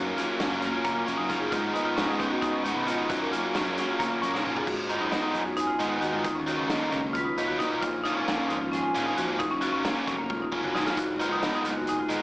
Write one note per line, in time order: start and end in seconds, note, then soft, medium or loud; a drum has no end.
0.00 0.12 F#2 medium
0.00 0.39 F#2 medium
0.00 1.52 F#2 medium
0.00 0.37 C#3 medium
0.00 0.18 F#3 medium
0.00 0.40 F#3 medium
0.00 0.16 A#3 medium
0.00 0.15 C#4 medium
0.05 0.17 A#4 medium
0.16 0.39 F#3 medium
0.16 0.39 A#3 medium
0.16 0.63 A#3 soft
0.16 0.40 C#4 medium
0.16 0.28 F4 medium
0.16 snare soft
0.16 closed hi-hat medium
0.28 0.39 F#4 medium
0.38 0.49 F#2 loud
0.38 0.84 C#3 medium
0.38 0.63 F#3 medium
0.38 1.57 F#3 medium
0.38 0.61 A#3 medium
0.38 0.61 C#4 medium
0.38 0.60 C#4 medium
0.38 snare loud
0.38 closed hi-hat medium
0.51 0.68 F#2 medium
0.61 1.08 F#3 soft
0.61 1.06 A#3 medium
0.61 1.50 A#3 medium
0.61 1.05 C#4 medium
0.61 0.73 F#4 medium
0.61 closed hi-hat medium
0.73 0.84 F4 medium
0.84 1.50 C#3 medium
0.84 0.96 A#3 medium
0.84 kick medium
0.84 closed hi-hat medium
0.95 1.07 F4 medium
1.06 1.16 F#2 medium
1.06 1.30 F#3 medium
1.06 1.29 A#3 medium
1.06 1.30 C#4 medium
1.06 1.18 C#4 medium
1.06 1.50 A#4 medium
1.06 closed hi-hat medium
1.17 1.45 F#2 medium
1.17 1.29 D#4 medium
1.29 1.50 F#2 medium
1.29 1.50 C#3 medium
1.29 1.52 F#3 medium
1.29 1.51 A#3 medium
1.29 1.51 C#4 medium
1.29 1.40 F4 medium
1.29 1.49 F4 medium
1.29 kick medium
1.29 snare soft
1.29 closed hi-hat medium
1.40 1.51 G#4 medium
1.51 1.96 G#2 medium
1.51 1.69 G#2 medium
1.51 3.07 G#2 medium
1.51 1.95 D#3 medium
1.51 1.76 G#3 medium
1.51 1.75 B3 medium
1.51 1.74 D#4 medium
1.51 1.74 F4 medium
1.51 kick loud
1.51 closed hi-hat medium
1.74 1.96 G#3 medium
1.74 2.19 B3 medium
1.74 1.96 B3 medium
1.74 1.85 D#4 medium
1.74 1.97 D#4 medium
1.74 closed hi-hat medium
1.85 1.96 F4 medium
1.96 2.06 G#2 medium
1.96 2.41 D#3 medium
1.96 2.20 G#3 medium
1.96 3.07 G#3 medium
1.96 2.18 B3 medium
1.96 2.08 C#4 medium
1.96 2.17 D#4 medium
1.96 snare medium
1.96 closed hi-hat medium
2.08 2.26 G#2 medium
2.08 2.19 D#4 medium
2.18 2.65 G#3 soft
2.18 2.64 B3 medium
2.18 3.07 B3 medium
2.18 2.30 C#4 medium
2.18 2.63 D#4 medium
2.18 kick medium
2.18 closed hi-hat soft
2.31 2.42 F#4 medium
2.42 3.07 D#3 medium
2.42 2.53 D#4 medium
2.42 kick medium
2.42 closed hi-hat medium
2.53 2.75 C#4 medium
2.64 2.73 G#2 medium
2.64 2.86 G#3 medium
2.64 2.87 B3 medium
2.64 2.88 D#4 medium
2.64 4.23 F#4 medium
2.64 closed hi-hat medium
2.75 3.02 B2 medium
2.75 2.87 B3 medium
2.86 3.08 G#2 medium
2.86 3.08 D#3 medium
2.86 3.08 G#3 medium
2.86 3.08 B3 medium
2.86 2.99 C#4 soft
2.86 3.09 D#4 medium
2.86 2.98 F4 medium
2.86 closed hi-hat medium
2.98 3.09 D#4 medium
2.98 3.10 D#4 soft
3.09 3.54 F#2 medium
3.09 4.67 F#2 medium
3.09 3.27 F#2 medium
3.09 3.53 C#3 medium
3.09 3.32 F#3 medium
3.09 3.32 A#3 medium
3.09 3.30 C#4 medium
3.09 3.21 F#4 medium
3.09 kick loud
3.09 closed hi-hat medium
3.21 3.32 A#4 medium
3.32 3.54 F#3 soft
3.32 3.55 A#3 medium
3.32 3.77 A#3 medium
3.32 3.55 C#4 medium
3.32 3.43 F4 medium
3.32 closed hi-hat medium
3.44 3.55 F#4 medium
3.54 3.63 F#2 loud
3.54 3.99 C#3 medium
3.54 4.64 F#3 medium
3.54 3.78 F#3 medium
3.54 3.77 A#3 medium
3.54 3.77 C#4 medium
3.54 3.76 C#4 medium
3.54 snare loud
3.54 closed hi-hat medium
3.66 3.83 F#2 medium
3.77 4.23 F#3 soft
3.77 4.22 A#3 soft
3.77 4.65 A#3 medium
3.77 4.21 C#4 soft
3.77 3.89 F#4 medium
3.77 snare soft
3.77 closed hi-hat medium
3.89 4.00 F4 medium
3.99 4.65 C#3 medium
3.99 4.10 A#3 medium
3.99 kick medium
3.99 snare soft
3.99 closed hi-hat medium
4.10 4.22 F4 medium
4.22 4.31 F#2 medium
4.22 4.45 F#3 medium
4.22 4.45 A#3 medium
4.22 4.33 C#4 medium
4.22 4.46 C#4 medium
4.22 4.65 A#4 medium
4.22 closed hi-hat medium
4.33 4.60 A#2 medium
4.33 4.44 D#4 medium
4.33 snare soft
4.45 4.66 F#2 medium
4.45 4.66 C#3 medium
4.45 4.66 F#3 medium
4.45 4.66 A#3 medium
4.45 4.67 C#4 medium
4.45 4.56 F4 medium
4.45 4.65 F4 medium
4.45 mid tom medium
4.56 4.67 G#4 medium
4.56 floor tom medium
4.67 5.01 G#2 medium
4.67 6.23 G#2 medium
4.67 4.89 F#4 medium
4.67 kick loud
4.67 crash medium
4.89 5.11 D#3 medium
4.89 5.11 G#3 medium
4.89 5.12 B3 medium
4.89 5.12 D#4 medium
4.89 6.23 D#4 soft
4.89 5.01 F4 medium
4.89 closed hi-hat soft
5.00 5.18 F#2 medium
5.00 5.12 D#4 medium
5.11 5.41 D#3 medium
5.11 5.41 G#3 medium
5.11 5.23 B3 medium
5.11 5.42 B3 medium
5.11 5.42 D#4 medium
5.11 snare medium
5.11 closed hi-hat medium
5.23 5.34 D#4 medium
5.34 5.69 F#2 medium
5.34 6.93 G#3 medium
5.34 5.80 B3 soft
5.34 5.45 F4 medium
5.34 closed hi-hat soft
5.46 5.57 F#4 medium
5.56 5.68 D#4 medium
5.56 6.96 G#4 soft
5.56 closed hi-hat medium
5.67 5.90 F4 medium
5.79 5.97 G#2 medium
5.79 6.00 D#3 medium
5.79 6.23 D#3 medium
5.79 6.00 G#3 medium
5.79 6.01 B3 medium
5.79 6.23 B3 medium
5.79 6.01 D#4 medium
5.79 closed hi-hat soft
5.89 6.01 D#4 medium
6.01 6.11 D#2 medium
6.01 6.24 D#3 medium
6.01 6.24 G#3 medium
6.01 6.25 B3 medium
6.01 6.25 D#4 medium
6.01 6.13 F#4 medium
6.01 closed hi-hat soft
6.13 6.22 G#2 medium
6.13 6.24 F4 medium
6.24 6.58 D#2 medium
6.24 7.81 D#3 medium
6.24 6.36 D#4 medium
6.24 kick loud
6.24 closed hi-hat medium
6.35 6.47 C#4 medium
6.46 6.68 D#3 medium
6.46 6.68 F#3 medium
6.46 6.69 A#3 medium
6.46 6.69 D#4 medium
6.46 8.05 F4 soft
6.46 6.58 F#4 medium
6.46 closed hi-hat medium
6.57 6.76 C#2 medium
6.57 6.69 C#4 medium
6.68 6.99 D#3 medium
6.68 6.99 F#3 medium
6.68 6.92 A#3 medium
6.68 6.99 A#3 medium
6.68 6.99 D#4 medium
6.68 snare medium
6.68 closed hi-hat medium
6.91 7.27 C#2 medium
6.91 7.80 F#3 medium
6.91 7.03 C#4 medium
6.91 7.38 C#4 medium
6.91 kick medium
6.91 closed hi-hat medium
7.02 7.14 A#3 medium
7.13 7.25 F4 medium
7.13 7.81 B4 medium
7.13 kick medium
7.13 closed hi-hat medium
7.25 7.37 D#4 medium
7.37 7.55 D#2 medium
7.37 7.80 A#2 medium
7.37 7.59 D#3 medium
7.37 7.59 F#3 medium
7.37 7.59 A#3 medium
7.37 8.51 C#4 medium
7.37 7.60 D#4 medium
7.37 7.48 F4 medium
7.37 closed hi-hat medium
7.48 7.60 F#4 medium
7.59 7.69 A#1 medium
7.59 7.83 D#3 medium
7.59 7.83 F#3 medium
7.59 7.83 A#3 medium
7.59 7.71 D#4 medium
7.59 7.83 D#4 medium
7.59 kick medium
7.59 snare soft
7.59 closed hi-hat medium
7.70 7.80 B1 medium
7.70 7.80 F4 medium
7.82 8.17 A#1 medium
7.82 8.94 A#2 medium
7.82 8.05 F4 medium
7.82 kick loud
7.82 closed hi-hat medium
8.04 8.26 A#2 medium
8.04 8.26 F3 medium
8.04 8.27 A#3 medium
8.04 8.27 C#4 medium
8.04 8.16 D#4 medium
8.04 9.38 F4 soft
8.04 closed hi-hat medium
8.15 8.34 G#1 medium
8.15 8.27 C#4 medium
8.26 8.57 A#2 medium
8.26 8.57 F3 medium
8.26 8.38 A#3 medium
8.26 8.57 A#3 medium
8.26 8.57 C#4 medium
8.26 snare medium
8.26 closed hi-hat medium
8.38 8.50 C#4 medium
8.48 8.85 G#1 medium
8.48 9.38 F3 medium
8.48 8.95 C#4 soft
8.48 8.61 D#4 medium
8.48 closed hi-hat medium
8.61 8.73 F4 medium
8.72 8.84 C#4 medium
8.72 9.42 G#4 medium
8.72 snare soft
8.72 closed hi-hat medium
8.83 9.06 F4 medium
8.95 9.13 A#1 medium
8.95 9.38 A#2 medium
8.95 9.16 A#2 medium
8.95 9.16 F3 medium
8.95 9.17 A#3 medium
8.95 9.17 C#4 medium
8.95 9.38 C#4 soft
8.95 snare soft
8.95 closed hi-hat medium
9.06 9.18 D#4 medium
9.17 9.26 F2 medium
9.17 9.40 A#2 medium
9.17 9.40 F3 medium
9.17 9.40 A#3 medium
9.17 9.41 C#4 medium
9.17 9.29 F#4 medium
9.17 closed hi-hat medium
9.28 9.38 G#1 medium
9.28 9.40 F4 medium
9.39 9.74 F#1 medium
9.39 10.72 F#2 medium
9.39 9.51 D#4 medium
9.39 kick loud
9.39 closed hi-hat medium
9.51 9.62 C#4 medium
9.61 9.83 C#3 medium
9.61 9.84 F#3 medium
9.61 9.84 A#3 medium
9.61 9.84 C#4 medium
9.61 10.95 F4 medium
9.61 9.73 F#4 medium
9.61 closed hi-hat soft
9.73 9.91 F1 medium
9.73 9.85 C#4 medium
9.84 10.14 C#3 medium
9.84 10.14 F#3 medium
9.84 10.07 A#3 medium
9.84 10.14 A#3 medium
9.84 10.15 C#4 medium
9.84 snare medium
9.84 closed hi-hat medium
10.06 10.43 F1 medium
10.06 10.99 F#3 medium
10.06 10.95 A#3 medium
10.06 10.19 C#4 medium
10.06 kick medium
10.06 closed hi-hat medium
10.18 10.30 A#3 medium
10.30 10.41 F4 medium
10.30 kick medium
10.30 high tom soft
10.42 10.53 D#4 medium
10.52 10.70 F#1 medium
10.52 10.73 C#3 medium
10.52 10.74 F#3 medium
10.52 10.74 A#3 medium
10.52 10.74 C#4 medium
10.52 10.64 F4 medium
10.52 kick medium
10.64 10.75 F#4 medium
10.64 mid tom medium
10.73 10.84 C#2 medium
10.73 10.96 F#2 medium
10.73 10.97 C#3 medium
10.73 10.98 F#3 medium
10.73 10.98 A#3 medium
10.73 10.98 C#4 medium
10.73 10.86 D#4 medium
10.73 snare medium
10.86 10.95 F#1 medium
10.86 10.98 F4 medium
10.86 snare medium
10.96 11.31 G#1 medium
10.96 12.22 G#2 medium
10.96 11.20 F#4 medium
10.96 kick loud
10.96 closed hi-hat medium
11.19 11.41 D#3 medium
11.19 11.41 G#3 medium
11.19 11.42 B3 medium
11.19 12.22 D#4 soft
11.19 11.42 D#4 medium
11.19 11.32 F4 medium
11.19 closed hi-hat medium
11.31 11.48 F#1 medium
11.31 11.43 D#4 medium
11.42 11.72 D#3 medium
11.42 11.72 G#3 medium
11.42 11.72 B3 medium
11.42 11.54 B3 medium
11.42 11.72 D#4 medium
11.42 snare medium
11.42 closed hi-hat medium
11.55 11.66 D#4 medium
11.64 11.99 F#1 medium
11.64 12.22 G#3 medium
11.64 12.09 B3 medium
11.64 11.77 F4 medium
11.64 closed hi-hat medium
11.78 11.88 F#4 medium
11.87 11.99 D#4 medium
11.87 12.22 G#4 medium
11.87 closed hi-hat medium
12.00 12.22 F4 medium
12.09 12.22 G#1 medium
12.09 12.22 D#3 medium
12.09 12.22 G#3 medium
12.09 12.22 B3 medium
12.09 12.22 D#4 medium
12.09 closed hi-hat medium